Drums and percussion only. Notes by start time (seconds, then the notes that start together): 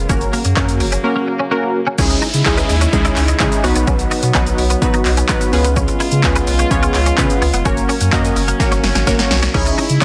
0.09 kick, shaker
0.21 closed hi-hat, shaker
0.33 open hi-hat, shaker
0.45 closed hi-hat, shaker
0.57 kick, clap, shaker
0.69 closed hi-hat, shaker
0.80 open hi-hat, shaker
0.92 closed hi-hat, shaker
1.98 kick, crash, shaker
2.10 closed hi-hat, shaker
2.22 open hi-hat, shaker
2.34 closed hi-hat, shaker
2.46 kick, clap, shaker
2.58 closed hi-hat, shaker
2.69 open hi-hat, shaker
2.81 closed hi-hat, shaker
2.93 kick, shaker
3.05 closed hi-hat, shaker
3.16 clap, open hi-hat, shaker
3.28 closed hi-hat, shaker
3.40 kick, clap, shaker
3.52 closed hi-hat, shaker
3.64 open hi-hat, shaker
3.76 closed hi-hat, shaker
3.87 kick, shaker
3.99 closed hi-hat, shaker
4.11 open hi-hat, shaker
4.23 closed hi-hat, shaker
4.35 kick, clap, shaker
4.47 closed hi-hat, shaker
4.58 open hi-hat, shaker
4.70 closed hi-hat, shaker
4.82 kick, shaker
4.94 closed hi-hat, shaker
5.05 clap, open hi-hat, shaker
5.17 closed hi-hat, shaker
5.29 kick, clap, shaker
5.41 closed hi-hat, shaker
5.53 open hi-hat, shaker
5.64 closed hi-hat, shaker
5.76 kick, shaker
5.88 closed hi-hat, shaker
6.00 open hi-hat, shaker
6.12 closed hi-hat, shaker
6.24 kick, clap, shaker
6.36 closed hi-hat, shaker
6.47 open hi-hat, shaker
6.59 closed hi-hat, shaker
6.71 kick, shaker
6.83 closed hi-hat, shaker
6.94 clap, open hi-hat, shaker
7.06 closed hi-hat, shaker
7.18 kick, clap, shaker
7.30 closed hi-hat, shaker
7.42 open hi-hat, shaker
7.54 closed hi-hat, shaker
7.65 kick, shaker
7.77 closed hi-hat, shaker
7.89 open hi-hat, shaker
8.01 closed hi-hat, shaker
8.13 kick, clap, shaker
8.25 closed hi-hat, shaker
8.36 open hi-hat, shaker
8.48 closed hi-hat, shaker
8.60 kick, snare, shaker
8.72 snare, closed hi-hat, shaker
8.84 snare, open hi-hat, shaker
8.95 snare, closed hi-hat, shaker
9.07 kick, snare, shaker
9.19 snare, closed hi-hat, shaker
9.31 snare, open hi-hat, shaker
9.43 snare, closed hi-hat, shaker
9.54 kick, crash
9.66 closed hi-hat, shaker
9.78 open hi-hat, shaker
9.90 closed hi-hat, shaker